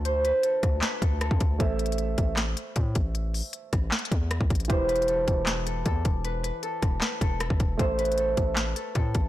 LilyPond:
<<
  \new Staff \with { instrumentName = "Harp" } { \time 4/4 \key a \minor \tempo 4 = 155 c''8 b'8 a'4 b'8 a'8 a'4 | r1 | r1 | c''8 b'8 a'4 b'8 a'8 a'4 |
b'8 b'8 a'4 b'8 a'8 a'4 | c''8 b'8 a'4 b'8 a'8 a'4 | }
  \new Staff \with { instrumentName = "Grand piano" } { \time 4/4 \key a \minor <d a f' d''>1 | <a a' c'' e''>1~ | <a a' c'' e''>1 | <e e' g' b'>1~ |
<e e' g' b'>1 | <a a' c'' e''>1 | }
  \new Staff \with { instrumentName = "808-style bass" } { \clef bass \time 4/4 \key a \minor d,8. r8. d,8 r8 d,8. f,16 d,8 | a,,4. a,,4 r8 a,8 a,,8~ | a,,8. r8. a,,8 r8 e,8. c,16 a,,8 | e,,4. e,,4. e,8 e,,8~ |
e,,8. r8. e,,8 r8 e,,8. g,,16 e,,8 | a,,4. a,,4 r8 a,8 a,,8 | }
  \new DrumStaff \with { instrumentName = "Drums" } \drummode { \time 4/4 hh8 hh8 hh8 <hh bd ss>8 <hc hh sn>8 <hh bd>8 <hh ss>16 bd16 <hh bd>8 | \tuplet 3/2 { <hh bd>16 r16 r16 hh16 hh16 hh16 } hh8 <hh bd>8 <hc hh sn>8 hh8 <hh bd>8 <hh bd>8 | hh8 hho8 hh8 <hh bd ss>8 \tuplet 3/2 { <hc hh sn>16 hh16 hh16 <hh bd>16 r16 r16 } <hh ss>16 bd16 <hh bd>32 hh32 hh32 hh32 | \tuplet 3/2 { <hh bd>16 r16 r16 hh16 hh16 hh16 } hh8 <hh bd>8 <hc hh sn>8 hh8 <hh bd>8 <hh bd>8 |
hh8 hh8 hh8 <hh bd ss>8 <hc hh sn>8 <hh bd>8 <hh ss>16 bd16 <hh bd>8 | \tuplet 3/2 { <hh bd>16 r16 r16 hh16 hh16 hh16 } hh8 <hh bd>8 <hc hh sn>8 hh8 <hh bd>8 <hh bd>8 | }
>>